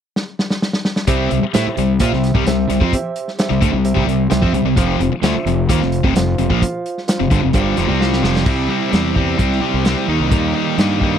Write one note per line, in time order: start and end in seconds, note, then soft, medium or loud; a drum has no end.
0.16 snare medium
0.39 snare medium
0.50 snare medium
0.62 snare medium
0.73 snare medium
0.85 snare medium
0.96 snare medium
1.07 1.29 C2 medium
1.07 1.30 C3 loud
1.07 1.30 G3 loud
1.07 1.30 C4 loud
1.07 1.45 G4 medium
1.07 1.45 C5 medium
1.07 1.45 E5 medium
1.07 kick loud
1.07 closed hi-hat medium
1.31 1.42 C2 medium
1.31 1.42 C3 medium
1.31 1.42 G3 medium
1.31 closed hi-hat medium
1.43 muted overdriven electric guitar stroke medium
1.43 muted distorted electric guitar stroke soft
1.54 1.65 A2 medium
1.54 1.65 A3 medium
1.54 1.65 E4 loud
1.54 1.91 G4 medium
1.54 1.91 C5 medium
1.54 1.91 E5 medium
1.54 snare loud
1.54 closed hi-hat medium
1.66 muted overdriven electric guitar stroke medium
1.66 muted distorted electric guitar stroke medium
1.66 muted fingered electric bass stroke soft
1.77 1.99 C2 medium
1.77 1.95 C3 medium
1.77 1.96 G3 medium
1.77 closed hi-hat medium
2.00 2.11 A#2 medium
2.00 2.11 A#3 loud
2.00 2.11 F4 medium
2.00 2.37 G4 medium
2.00 2.38 C5 medium
2.00 2.38 E5 medium
2.00 kick medium
2.00 closed hi-hat loud
2.11 2.34 C2 medium
2.11 2.30 C3 medium
2.11 2.30 G3 medium
2.11 snare soft
2.24 snare soft
2.24 closed hi-hat medium
2.34 2.45 C2 medium
2.34 2.44 C3 medium
2.34 2.44 G3 medium
2.34 kick loud
2.45 2.68 C2 medium
2.45 2.64 C3 medium
2.45 2.64 G3 medium
2.45 2.84 G4 medium
2.45 2.84 C5 medium
2.45 2.84 E5 loud
2.45 snare loud
2.45 closed hi-hat medium
2.68 2.80 C2 medium
2.68 2.80 C3 medium
2.68 2.80 G3 medium
2.68 closed hi-hat medium
2.80 2.92 F2 medium
2.80 2.91 F3 medium
2.80 2.92 C4 loud
2.80 kick loud
2.93 3.30 G4 medium
2.93 3.30 C5 medium
2.93 3.31 E5 medium
2.93 kick medium
2.93 closed hi-hat loud
3.16 closed hi-hat medium
3.28 snare soft
3.39 3.76 G4 medium
3.39 3.75 C5 medium
3.39 3.76 E5 medium
3.39 snare loud
3.39 closed hi-hat medium
3.51 3.61 C2 medium
3.51 3.61 C3 medium
3.51 3.62 G3 medium
3.62 3.73 D2 medium
3.62 3.72 D3 medium
3.62 3.73 A3 loud
3.62 kick loud
3.62 closed hi-hat medium
3.73 3.95 C2 medium
3.73 3.92 C3 medium
3.73 3.92 G3 medium
3.84 4.22 G4 medium
3.84 4.22 C5 medium
3.84 4.22 E5 medium
3.84 closed hi-hat medium
3.95 4.06 C2 medium
3.95 4.05 C3 medium
3.95 4.06 G3 medium
3.95 kick loud
4.06 4.29 C2 medium
4.06 4.26 C3 medium
4.06 4.26 G3 medium
4.06 closed hi-hat medium
4.30 4.42 C2 medium
4.30 4.41 C3 medium
4.30 4.42 G3 medium
4.30 4.68 G4 medium
4.30 4.68 C5 medium
4.30 4.68 E5 medium
4.30 snare loud
4.30 closed hi-hat medium
4.41 4.53 F2 medium
4.41 4.53 F3 medium
4.41 4.53 C4 medium
4.41 kick medium
4.53 4.64 C2 medium
4.53 4.64 C3 medium
4.53 4.64 G3 medium
4.53 closed hi-hat medium
4.64 4.76 C2 medium
4.64 4.75 C3 medium
4.64 4.76 G3 medium
4.76 4.99 F1 medium
4.76 4.97 F2 medium
4.76 4.98 C3 medium
4.76 4.99 F3 loud
4.76 5.14 F4 medium
4.76 5.14 C5 medium
4.76 5.14 F5 medium
4.76 kick loud
4.76 closed hi-hat medium
4.98 5.11 F1 medium
4.98 5.09 F2 medium
4.98 5.11 C3 medium
4.98 closed hi-hat medium
5.10 muted overdriven electric guitar stroke medium
5.10 muted distorted electric guitar stroke medium
5.10 muted fingered electric bass stroke soft
5.22 5.34 D2 medium
5.22 5.33 D3 medium
5.22 5.34 A3 loud
5.22 5.61 F4 medium
5.22 5.61 C5 medium
5.22 5.61 E5 medium
5.22 snare loud
5.22 closed hi-hat medium
5.34 muted overdriven electric guitar stroke medium
5.34 muted distorted electric guitar stroke medium
5.34 muted fingered electric bass stroke soft
5.46 5.67 F1 medium
5.46 5.65 F2 medium
5.46 5.65 C3 medium
5.46 closed hi-hat medium
5.69 5.81 D#2 medium
5.69 5.81 D#3 medium
5.69 5.81 A#3 loud
5.69 6.06 F4 medium
5.69 6.07 C5 medium
5.69 6.07 F5 medium
5.69 kick loud
5.69 closed hi-hat loud
5.81 6.03 F1 medium
5.81 6.00 F2 medium
5.81 6.00 C3 medium
5.81 snare soft
5.92 closed hi-hat medium
6.04 6.15 F1 medium
6.04 6.14 F2 medium
6.04 6.14 C3 medium
6.04 kick loud
6.15 6.38 F1 medium
6.15 6.34 F2 medium
6.15 6.34 C3 medium
6.15 6.53 F4 medium
6.15 6.54 C5 medium
6.15 6.54 F5 medium
6.15 snare loud
6.15 closed hi-hat loud
6.38 6.50 F1 medium
6.38 6.51 F2 medium
6.38 6.49 C3 medium
6.38 closed hi-hat medium
6.49 6.61 A#1 medium
6.49 6.61 A#2 medium
6.49 6.61 F3 medium
6.49 kick medium
6.62 6.99 F4 medium
6.62 6.99 C5 medium
6.62 7.00 F5 medium
6.62 kick loud
6.62 closed hi-hat medium
6.86 closed hi-hat medium
6.98 snare soft
7.08 7.45 F4 medium
7.08 7.45 C5 medium
7.08 7.46 F5 medium
7.08 snare loud
7.08 closed hi-hat medium
7.20 7.31 F1 medium
7.20 7.31 F2 medium
7.20 7.31 C3 medium
7.31 7.42 G1 medium
7.31 7.42 G2 medium
7.31 7.42 D3 medium
7.31 kick loud
7.31 closed hi-hat medium
7.43 7.54 F1 medium
7.43 7.53 F2 medium
7.43 7.53 C3 medium
7.53 7.76 G1 medium
7.53 7.76 G2 medium
7.53 7.76 D3 medium
7.53 7.77 G3 loud
7.53 7.91 F4 medium
7.53 7.92 C5 medium
7.53 7.92 F5 medium
7.53 kick loud
7.53 closed hi-hat medium
7.77 7.88 F1 medium
7.77 7.88 F2 medium
7.77 7.86 C3 medium
7.77 snare soft
7.77 closed hi-hat medium
7.87 8.21 C2 medium
7.87 8.21 C3 medium
7.87 8.23 G3 medium
7.87 8.23 C4 medium
8.00 8.37 F4 medium
8.00 8.38 C5 medium
8.00 8.38 F5 medium
8.00 snare medium
8.13 snare medium
8.22 8.45 F1 medium
8.22 8.45 F2 medium
8.22 8.44 C3 medium
8.22 8.46 F3 loud
8.22 snare medium
8.36 snare medium
8.45 8.67 C2 medium
8.45 8.67 C3 medium
8.45 8.68 G3 loud
8.45 8.68 C4 loud
8.45 8.68 E4 loud
8.45 kick loud
8.45 crash medium
8.68 8.90 C3 medium
8.68 8.91 G3 medium
8.68 8.91 C4 medium
8.68 8.92 E4 medium
8.92 9.34 E2 medium
8.92 9.14 C3 medium
8.92 9.15 G3 loud
8.92 9.15 C4 medium
8.92 9.15 E4 medium
8.92 snare loud
8.92 closed hi-hat medium
9.16 9.36 C3 medium
9.16 9.37 G3 medium
9.16 9.37 C4 medium
9.16 9.38 E4 medium
9.16 kick medium
9.38 9.60 C2 medium
9.38 9.60 C3 medium
9.38 9.60 G3 medium
9.38 9.60 C4 medium
9.38 9.61 E4 medium
9.38 kick loud
9.38 closed hi-hat medium
9.52 snare soft
9.61 9.83 C3 medium
9.61 9.83 G3 medium
9.61 9.83 C4 medium
9.61 9.84 E4 medium
9.74 9.95 C2 medium
9.84 10.06 C3 medium
9.84 10.07 G3 medium
9.84 10.07 C4 medium
9.84 10.07 E4 loud
9.84 snare loud
9.84 closed hi-hat medium
10.07 10.19 D#2 medium
10.07 10.29 D#3 medium
10.07 10.30 G3 medium
10.07 10.30 A#3 loud
10.07 10.30 D#4 loud
10.20 10.31 C2 medium
10.30 10.52 D#2 medium
10.30 10.52 D#3 medium
10.30 10.53 G3 medium
10.30 10.53 A#3 loud
10.30 10.53 D#4 loud
10.30 kick loud
10.30 closed hi-hat medium
10.53 10.76 D#3 medium
10.53 10.76 G3 medium
10.53 10.77 A#3 medium
10.53 10.77 D#4 medium
10.77 11.19 G2 medium
10.77 10.98 D#3 medium
10.77 10.98 G3 medium
10.77 10.99 A#3 loud
10.77 10.99 D#4 medium
10.77 snare loud
10.77 closed hi-hat medium
10.99 11.19 D#3 medium
10.99 11.19 G3 medium
10.99 11.19 A#3 medium
10.99 11.19 D#4 medium
10.99 kick medium